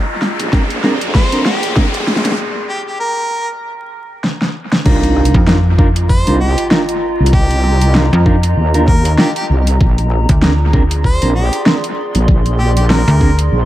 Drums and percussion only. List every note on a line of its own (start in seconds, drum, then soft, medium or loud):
0.22 snare medium
0.39 closed hi-hat medium
0.53 kick loud
0.53 snare medium
0.70 closed hi-hat soft
0.84 snare medium
1.01 closed hi-hat medium
1.15 kick loud
1.15 snare medium
1.32 closed hi-hat medium
1.45 snare medium
1.63 closed hi-hat medium
1.76 kick loud
1.76 snare medium
1.94 closed hi-hat medium
2.07 snare medium
2.16 snare medium
2.25 snare medium
2.25 closed hi-hat medium
2.31 snare soft
4.24 snare medium
4.41 snare medium
4.72 snare medium
4.85 kick loud
4.85 crash loud
5.03 closed hi-hat soft
5.17 cross-stick soft
5.25 closed hi-hat medium
5.34 kick loud
5.47 snare loud
5.78 kick loud
5.96 closed hi-hat medium
6.09 kick medium
6.27 closed hi-hat medium
6.58 closed hi-hat medium
6.71 snare loud
6.89 closed hi-hat medium
7.26 closed hi-hat medium
7.33 kick loud
7.51 closed hi-hat soft
7.64 cross-stick soft
7.81 closed hi-hat medium
7.95 snare loud
8.26 kick medium
8.43 closed hi-hat medium
8.74 closed hi-hat medium
8.88 kick loud
9.05 closed hi-hat medium
9.18 snare loud
9.36 closed hi-hat medium
9.67 closed hi-hat medium
9.81 kick loud
9.98 closed hi-hat soft
10.11 cross-stick soft
10.29 kick loud
10.29 closed hi-hat medium
10.42 snare loud
10.73 kick loud
10.91 closed hi-hat medium
11.04 kick medium
11.22 closed hi-hat medium
11.53 closed hi-hat medium
11.66 snare loud
11.84 closed hi-hat medium
12.15 closed hi-hat medium
12.28 kick loud
12.46 closed hi-hat soft
12.59 cross-stick soft
12.77 closed hi-hat medium
12.90 snare loud
13.08 closed hi-hat soft
13.21 kick medium
13.39 closed hi-hat medium